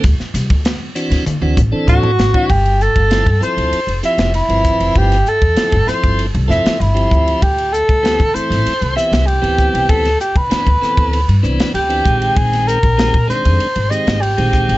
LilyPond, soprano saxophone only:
\new Staff \with { instrumentName = "Soprano saxophone" } { \time 4/4 \key d \mixolydian \tempo 4 = 97 r2. fis'4 | \key g \mixolydian g'8 a'4 c''4 e''8 e'4 | g'8 a'4 c''8 r8 e''8 e'4 | g'8 a'4 c''4 e''8 g'4 |
a'8 g'16 b'4.~ b'16 r8 g'4 | aes'8 bes'4 c''4 ees''8 g'4 | }